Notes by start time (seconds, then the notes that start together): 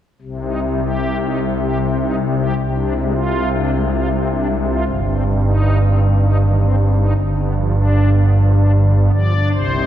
0.22 C2 C3
0.42 D#4
0.62 G3
0.82 G4
1.21 D#4
1.41 G3
1.61 G4
1.80 C4
1.98 D#4
2.17 G3
2.37 G4
2.57 C2 C3
2.76 D4
2.95 G#3
3.14 F4
3.53 D4
3.73 G#3
3.91 F4
4.11 C4
4.30 D4
4.50 G#3
4.68 F4
4.87 G1 G2
5.07 C4
5.25 G3
5.44 D#4
5.82 C4
6.01 G3
6.20 D#4
6.39 D#3
6.58 C4
6.77 G3
6.96 D#4
7.15 G1 G2
7.36 B3
7.55 F3
7.74 D4
8.13 B3
8.34 F3
8.54 D4
8.74 D3
8.94 B3
9.14 F3 D5
9.35 D4
9.54 C2 C3 C5
9.74 D#4